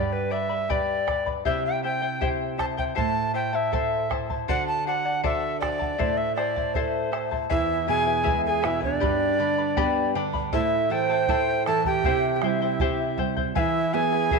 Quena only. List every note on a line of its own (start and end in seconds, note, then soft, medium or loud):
7.51 7.86 E4 medium
7.89 8.41 G#4 medium
8.45 8.51 A4 medium
8.50 8.67 G#4 medium
8.65 8.83 E4 medium
8.84 10.12 D4 medium
10.53 10.93 E4 medium
10.92 11.66 C5 medium
11.66 11.84 A4 medium
11.86 12.36 G4 medium
12.36 12.46 G4 soft
12.45 13.19 E4 medium
13.57 13.96 E4 medium
13.95 14.39 G#4 medium